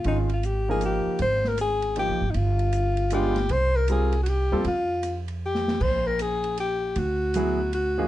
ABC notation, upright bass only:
X:1
M:3/4
L:1/8
Q:"Swing" 1/4=156
K:Ab
V:1 name="Upright bass" clef=bass
A,,,4- A,,, z | A,,,4- (3A,,, B,,, A,,, | G,,,6 | C,,4- C,, E,, |
F,,6 | B,,,6 | =D,,6 |]